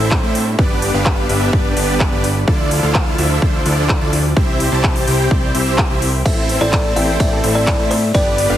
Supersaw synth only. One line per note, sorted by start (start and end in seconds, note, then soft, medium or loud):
0.00 0.20 C4 medium
0.00 0.20 E4 medium
0.00 0.20 A4 medium
0.00 0.20 C5 medium
0.00 0.20 E5 loud
0.23 0.39 C4 medium
0.23 0.39 E4 medium
0.23 0.39 A4 medium
0.23 0.39 C5 medium
0.23 0.39 E5 loud
0.59 0.91 B3 loud
0.59 0.91 D4 medium
0.59 0.91 G4 medium
0.59 0.91 B4 medium
0.59 0.91 D5 loud
0.94 1.27 B3 loud
0.94 1.27 D4 medium
0.94 1.27 G4 medium
0.94 1.27 B4 medium
0.94 1.27 F5 loud
1.30 1.50 B3 medium
1.30 1.50 D4 medium
1.30 1.50 G4 medium
1.30 1.50 B4 medium
1.30 1.50 E5 loud
1.53 1.74 B3 medium
1.53 1.74 D4 medium
1.53 1.74 G4 medium
1.53 1.74 B4 medium
1.53 1.74 D5 medium
1.77 2.09 B3 medium
1.77 2.09 D4 medium
1.77 2.09 G4 medium
1.77 2.09 B4 medium
1.77 2.09 D5 loud
2.12 2.28 B3 medium
2.12 2.28 D4 medium
2.12 2.28 G4 medium
2.12 2.28 B4 medium
2.12 2.28 D5 medium
2.48 2.80 D4 loud
2.48 2.80 E4 medium
2.48 2.80 F4 medium
2.48 2.80 A4 medium
2.48 2.80 D5 loud
2.83 3.16 D4 loud
2.83 3.16 E4 medium
2.83 3.16 F4 medium
2.83 3.16 A4 medium
2.83 3.16 F5 loud
3.19 3.39 D4 medium
3.19 3.39 E4 medium
3.19 3.39 F4 medium
3.19 3.39 A4 medium
3.19 3.39 E5 loud
3.42 3.63 D4 medium
3.42 3.63 E4 medium
3.42 3.63 F4 medium
3.42 3.63 A4 medium
3.42 3.63 C5 medium
3.66 3.98 D4 medium
3.66 3.98 E4 medium
3.66 3.98 F4 medium
3.66 3.98 A4 medium
3.66 3.98 D5 loud
4.01 4.17 D4 medium
4.01 4.17 E4 medium
4.01 4.17 F4 medium
4.01 4.17 A4 medium
4.01 4.17 D5 loud
4.36 4.69 C4 loud
4.36 4.69 E4 medium
4.36 4.69 G4 medium
4.36 4.69 C5 medium
4.36 4.69 E5 loud
4.72 5.05 C4 loud
4.72 5.05 E4 medium
4.72 5.05 G4 medium
4.72 5.05 C5 medium
4.72 5.05 A5 loud
5.07 5.28 C4 medium
5.07 5.28 E4 medium
5.07 5.28 G4 medium
5.07 5.28 C5 medium
5.07 5.28 G5 loud
5.31 5.52 C4 medium
5.31 5.52 E4 medium
5.31 5.52 G4 medium
5.31 5.52 C5 medium
5.31 5.52 D5 medium
5.54 5.87 C4 medium
5.54 5.87 E4 medium
5.54 5.87 G4 medium
5.54 5.87 C5 medium
5.54 5.87 E5 loud
5.90 6.06 C4 medium
5.90 6.06 E4 medium
5.90 6.06 G4 medium
5.90 6.06 C5 medium
5.90 6.06 E5 medium
6.25 6.58 C4 loud
6.25 6.58 E4 medium
6.25 6.58 A4 medium
6.25 6.58 C5 medium
6.25 6.58 E5 loud
6.61 6.94 C4 medium
6.61 6.94 E4 medium
6.61 6.94 A4 medium
6.61 6.94 C5 medium
6.61 6.94 A5 loud
6.96 7.17 C4 medium
6.96 7.17 E4 medium
6.96 7.17 A4 medium
6.96 7.17 C5 medium
6.96 7.17 G5 loud
7.20 7.41 C4 medium
7.20 7.41 E4 medium
7.20 7.41 A4 medium
7.20 7.41 C5 medium
7.20 7.41 D5 medium
7.44 7.76 C4 medium
7.44 7.76 E4 medium
7.44 7.76 A4 medium
7.44 7.76 C5 medium
7.44 7.76 E5 loud
7.79 7.95 C4 medium
7.79 7.95 E4 medium
7.79 7.95 A4 medium
7.79 7.95 C5 medium
7.79 7.95 E5 loud
8.14 8.47 B3 loud
8.14 8.47 D4 medium
8.14 8.47 G4 medium
8.14 8.47 B4 medium
8.14 8.47 D5 loud
8.50 8.57 B3 loud
8.50 8.57 D4 medium
8.50 8.57 G4 medium
8.50 8.57 B4 medium
8.50 8.57 F5 loud